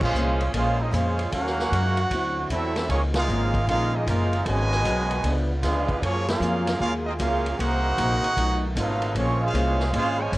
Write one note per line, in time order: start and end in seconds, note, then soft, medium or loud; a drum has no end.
0.00 0.13 A#1 loud
0.00 1.31 A#2 medium
0.00 1.31 G#3 medium
0.00 0.51 G#3 medium
0.00 0.13 A#3 medium
0.00 1.31 A#3 medium
0.00 0.13 C#4 medium
0.00 1.31 C#4 medium
0.00 0.51 C#4 medium
0.00 0.13 F4 medium
0.00 0.51 F4 medium
0.00 0.13 G#4 medium
0.00 0.51 G#4 medium
0.00 0.14 C5 medium
0.00 0.51 C5 medium
0.00 0.51 F5 medium
0.00 kick loud
0.00 crash medium
0.14 0.52 C2 loud
0.14 0.42 A#3 medium
0.14 0.42 C#4 medium
0.14 0.42 G#4 medium
0.14 0.43 C5 medium
0.14 hi-hat pedal medium
0.41 ride medium
0.54 0.92 A#1 medium
0.54 0.78 G#3 medium
0.54 0.81 A#3 medium
0.54 0.81 C#4 medium
0.54 0.78 C#4 medium
0.54 0.79 C#4 medium
0.54 0.78 F4 medium
0.54 0.81 G#4 medium
0.54 0.78 G#4 medium
0.54 0.82 C5 medium
0.54 0.79 C5 medium
0.54 0.79 F5 loud
0.54 kick soft
0.54 ride medium
0.80 0.94 C4 medium
0.80 0.94 D#4 medium
0.80 0.94 F4 medium
0.80 0.94 G#4 medium
0.80 0.94 D#5 medium
0.91 1.31 F2 medium
0.91 1.33 G#3 medium
0.91 1.19 A#3 medium
0.91 1.20 C#4 medium
0.91 1.33 C#4 medium
0.91 1.32 C#4 medium
0.91 1.33 F4 medium
0.91 1.20 G#4 medium
0.91 1.33 G#4 medium
0.91 1.20 C5 medium
0.91 1.33 C5 medium
0.91 1.32 F5 loud
0.91 kick soft
0.91 hi-hat pedal medium
0.91 ride medium
1.19 ride medium
1.32 1.70 D#2 medium
1.32 2.10 C#3 medium
1.32 1.59 D#3 soft
1.32 2.88 F#3 medium
1.32 1.60 G#3 soft
1.32 2.10 G#3 medium
1.32 2.08 A#3 medium
1.32 2.08 C#4 medium
1.32 1.60 C#4 medium
1.32 2.10 F#4 medium
1.32 2.47 F#4 medium
1.32 1.60 F#4 medium
1.32 2.07 A#4 medium
1.32 2.07 F5 medium
1.32 2.47 F#5 loud
1.32 kick soft
1.32 ride medium
1.46 snare soft
1.59 snare medium
1.72 2.10 F#2 loud
1.72 1.99 D#3 medium
1.72 1.99 G#3 medium
1.72 1.99 C#4 medium
1.72 2.00 F#4 medium
1.72 kick soft
1.72 hi-hat pedal soft
1.72 ride medium
1.97 ride medium
2.10 2.49 D2 medium
2.10 2.89 D3 medium
2.10 2.38 D3 medium
2.10 2.38 F#3 medium
2.10 2.89 C4 medium
2.10 2.39 C4 medium
2.10 2.89 E4 loud
2.10 2.39 E4 medium
2.10 kick soft
2.10 ride medium
2.50 2.88 E2 medium
2.50 2.77 D3 medium
2.50 2.78 F#3 medium
2.50 2.87 A3 medium
2.50 2.87 C4 medium
2.50 2.78 C4 medium
2.50 2.87 E4 medium
2.50 2.78 E4 medium
2.50 2.87 F#4 medium
2.50 2.88 A4 medium
2.50 2.87 E5 loud
2.50 kick soft
2.50 hi-hat pedal medium
2.50 ride medium
2.76 snare medium
2.76 ride medium
2.88 3.27 C#2 medium
2.88 3.16 C#3 medium
2.88 4.44 D#3 medium
2.88 3.16 F3 medium
2.88 5.21 G#3 medium
2.88 3.01 G#3 medium
2.88 3.01 A#3 medium
2.88 3.17 A#3 medium
2.88 3.02 A#3 medium
2.88 4.44 C#4 medium
2.88 3.00 C#4 medium
2.88 3.17 D#4 medium
2.88 4.44 F4 medium
2.88 3.02 F4 medium
2.88 3.02 G#4 medium
2.88 3.02 C#5 loud
2.88 kick soft
2.88 ride medium
3.14 3.64 G#3 medium
3.14 3.64 A#3 medium
3.14 3.64 F4 medium
3.14 3.66 G#4 medium
3.14 3.65 A#4 medium
3.14 3.66 F5 loud
3.14 snare loud
3.14 ride medium
3.18 3.66 D#4 medium
3.28 3.66 G#1 loud
3.28 3.55 C#3 medium
3.28 3.56 F3 medium
3.28 3.56 A#3 medium
3.28 3.56 D#4 medium
3.28 hi-hat pedal medium
3.54 kick medium
3.54 ride soft
3.67 4.05 A#1 loud
3.67 3.94 C#3 medium
3.67 3.95 F3 medium
3.67 3.92 G#3 loud
3.67 3.95 A#3 medium
3.67 3.92 A#3 loud
3.67 3.96 D#4 medium
3.67 3.93 D#4 medium
3.67 3.92 F4 medium
3.67 3.93 G#4 medium
3.67 3.93 A#4 medium
3.67 3.93 F5 loud
3.67 kick soft
3.67 ride medium
3.94 4.06 G#3 medium
3.94 4.06 A#3 medium
3.94 4.08 A#3 medium
3.94 4.07 D#4 medium
3.94 4.08 F4 medium
3.94 4.08 G#4 medium
3.94 4.08 D#5 loud
4.06 4.45 F#1 loud
4.06 4.34 C#3 medium
4.06 4.34 F3 medium
4.06 4.43 G#3 medium
4.06 4.43 A#3 medium
4.06 4.34 A#3 medium
4.06 4.34 D#4 medium
4.06 4.44 D#4 medium
4.06 4.43 F4 medium
4.06 4.44 G#4 medium
4.06 4.44 A#4 medium
4.06 4.44 F5 loud
4.06 kick soft
4.06 hi-hat pedal medium
4.06 ride medium
4.33 ride medium
4.45 4.84 G#1 loud
4.45 4.73 G#2 medium
4.45 5.40 B2 loud
4.45 5.24 C#3 medium
4.45 5.40 D#3 medium
4.45 4.74 F#3 medium
4.45 5.40 G#3 loud
4.45 6.02 B3 medium
4.45 4.73 B3 medium
4.45 4.74 C#4 medium
4.45 5.24 F#4 medium
4.45 5.41 F#4 loud
4.45 5.41 B4 loud
4.45 5.41 D#5 loud
4.45 5.42 G#5 loud
4.45 kick soft
4.45 ride medium
4.71 snare soft
4.84 5.23 B1 loud
4.84 5.12 G#2 medium
4.84 5.12 F#3 medium
4.84 5.12 B3 medium
4.84 5.12 C#4 medium
4.84 kick soft
4.84 hi-hat pedal medium
4.84 ride medium
5.11 ride medium
5.22 5.62 C#2 medium
5.22 5.50 C#3 medium
5.22 6.02 C#3 medium
5.22 6.02 D3 medium
5.22 5.51 F3 medium
5.22 5.51 B3 medium
5.22 5.51 D4 medium
5.22 6.02 F4 medium
5.22 kick soft
5.22 ride medium
5.62 6.01 D2 loud
5.62 5.91 C#3 medium
5.62 5.91 F3 medium
5.62 5.99 G#3 medium
5.62 5.99 B3 medium
5.62 5.91 B3 medium
5.62 5.99 F4 medium
5.62 6.01 G#4 medium
5.62 kick soft
5.62 snare soft
5.62 hi-hat pedal medium
5.62 ride medium
5.66 6.01 D4 medium
5.66 5.92 D4 medium
5.66 6.01 B4 medium
5.66 6.01 F5 medium
5.88 kick medium
5.88 ride medium
6.01 6.40 F#2 medium
6.01 6.28 F3 medium
6.01 6.30 F#3 medium
6.01 7.58 G#3 medium
6.01 6.27 A#3 medium
6.01 8.35 A#3 medium
6.01 6.30 A#3 medium
6.01 6.29 A#3 medium
6.01 6.27 C#4 medium
6.01 7.58 F4 medium
6.01 6.29 F4 medium
6.01 6.31 F4 medium
6.01 8.35 G#4 medium
6.01 6.28 G#4 medium
6.01 6.29 C#5 loud
6.01 kick soft
6.01 ride medium
6.05 6.31 G#4 medium
6.28 6.77 A#3 medium
6.28 6.77 C#4 medium
6.28 6.78 C#4 medium
6.28 6.77 F4 medium
6.28 6.78 G#4 medium
6.28 6.78 A#4 medium
6.28 6.78 F5 loud
6.28 snare loud
6.28 ride medium
6.40 6.79 F2 loud
6.40 6.69 F#3 medium
6.40 6.69 A#3 medium
6.40 6.69 F4 medium
6.40 6.69 G#4 medium
6.40 hi-hat pedal medium
6.67 snare medium
6.67 ride medium
6.80 7.18 D#2 loud
6.80 7.07 F#3 medium
6.80 6.91 A#3 medium
6.80 7.07 A#3 medium
6.80 6.92 C#4 loud
6.80 6.93 C#4 medium
6.80 6.92 F4 loud
6.80 7.08 F4 medium
6.80 6.92 G#4 medium
6.80 7.08 G#4 medium
6.80 6.93 A#4 medium
6.80 6.93 F5 loud
6.80 kick soft
7.04 7.13 C4 medium
7.04 7.11 D#4 medium
7.04 7.13 F4 medium
7.04 7.13 G#4 medium
7.04 7.13 D#5 medium
7.19 7.58 C#2 medium
7.19 7.46 F#3 medium
7.19 7.46 A#3 medium
7.19 7.57 A#3 medium
7.19 7.57 C#4 medium
7.19 7.47 F4 medium
7.19 7.57 F4 medium
7.19 7.47 G#4 medium
7.19 7.57 G#4 medium
7.19 7.57 A#4 medium
7.19 7.57 F5 loud
7.19 kick soft
7.19 hi-hat pedal medium
7.19 ride medium
7.46 ride medium
7.58 7.97 C2 loud
7.58 7.85 C3 medium
7.58 9.14 D#3 medium
7.58 8.33 A#3 medium
7.58 7.86 A#3 medium
7.58 8.36 C4 medium
7.58 8.72 D#4 loud
7.58 8.73 D#4 loud
7.58 7.86 D#4 medium
7.58 8.72 F#4 loud
7.58 7.86 F#4 medium
7.58 8.33 A#4 loud
7.58 8.34 C5 loud
7.58 8.73 F#5 loud
7.58 kick soft
7.58 ride medium
7.97 8.22 A#1 loud
7.97 8.25 C3 medium
7.97 8.25 A#3 medium
7.97 8.25 D#4 medium
7.97 8.25 F#4 medium
7.97 kick soft
7.97 hi-hat pedal medium
7.97 ride medium
8.24 ride medium
8.36 8.75 B1 medium
8.36 8.64 B2 medium
8.36 9.15 A3 medium
8.36 8.64 A3 medium
8.36 9.14 B3 medium
8.36 9.15 D#4 medium
8.36 8.65 D#4 medium
8.36 8.65 F4 medium
8.36 kick soft
8.36 ride medium
8.75 9.14 G#1 loud
8.75 9.03 B2 medium
8.75 9.13 F#3 medium
8.75 9.03 A3 medium
8.75 9.14 A3 medium
8.75 9.04 D#4 medium
8.75 9.14 D#4 medium
8.75 9.04 F4 medium
8.75 9.14 F4 medium
8.75 9.14 A4 medium
8.75 9.14 B4 medium
8.75 9.14 F5 loud
8.75 kick soft
8.75 hi-hat pedal medium
8.75 ride medium
9.02 ride medium
9.14 9.53 A#1 loud
9.14 10.38 A#2 loud
9.14 9.42 F3 medium
9.14 10.38 G#3 medium
9.14 9.40 G#3 medium
9.14 9.42 G#3 loud
9.14 10.38 A#3 medium
9.14 9.42 A#3 medium
9.14 10.38 C#4 loud
9.14 9.43 C#4 medium
9.14 9.41 C#4 medium
9.14 9.43 F4 loud
9.14 9.43 G#4 medium
9.14 9.43 C5 medium
9.14 kick soft
9.14 ride medium
9.19 9.43 C4 medium
9.19 9.43 C#5 loud
9.41 9.90 G#3 medium
9.41 9.91 C#4 medium
9.41 9.90 F4 medium
9.41 9.92 C5 medium
9.46 9.93 C#4 medium
9.46 9.93 G#4 medium
9.46 9.93 F5 loud
9.54 9.92 C2 loud
9.54 9.81 A#3 medium
9.54 9.81 C#4 medium
9.54 9.82 G#4 medium
9.54 9.82 C5 medium
9.54 kick soft
9.54 hi-hat pedal medium
9.54 ride medium
9.80 snare soft
9.93 10.32 G#1 loud
9.93 10.18 G#3 loud
9.93 10.21 A#3 soft
9.93 10.18 C#4 medium
9.93 10.21 C#4 medium
9.93 10.19 C#4 loud
9.93 10.18 F4 loud
9.93 10.21 G#4 medium
9.93 10.19 G#4 loud
9.93 10.22 C5 medium
9.93 10.19 C5 loud
9.93 10.19 F5 loud
9.93 kick soft
9.93 ride medium
10.20 10.34 C#3 medium
10.20 10.34 F3 medium
10.20 10.34 G#3 medium
10.20 10.35 F4 loud
10.20 10.35 C5 loud
10.20 10.34 C#5 loud
10.20 10.34 G#5 loud
10.32 10.38 F#1 loud
10.32 10.38 C#3 medium
10.32 10.38 A#3 medium
10.32 10.38 C#4 medium
10.32 10.38 G#4 medium
10.32 kick soft
10.32 hi-hat pedal medium
10.32 ride medium